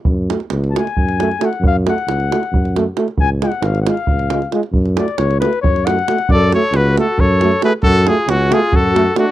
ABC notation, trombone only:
X:1
M:7/8
L:1/8
Q:1/4=135
K:F#m
V:1 name="Trombone"
z A, z A, z A, A, | z A, z A, z A, A, | z G, z G, z G, G, | z A, z A, z A, A, |
z A, z A, z A, A, | z A, z A, z A, A, |]